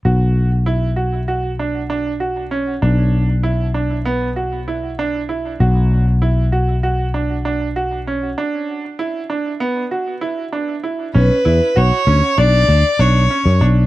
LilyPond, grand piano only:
\new Staff \with { instrumentName = "Grand piano" } { \time 9/8 \key b \minor \tempo 4. = 65 fis'4 e'8 fis'8 fis'8 d'8 d'8 fis'8 cis'8 | d'4 e'8 d'8 b8 fis'8 e'8 d'8 e'8 | fis'4 e'8 fis'8 fis'8 d'8 d'8 fis'8 cis'8 | d'4 e'8 d'8 b8 fis'8 e'8 d'8 e'8 |
cis'8 e'8 fis'8 cis'8 d'4 d'8 cis'8 d'8 | }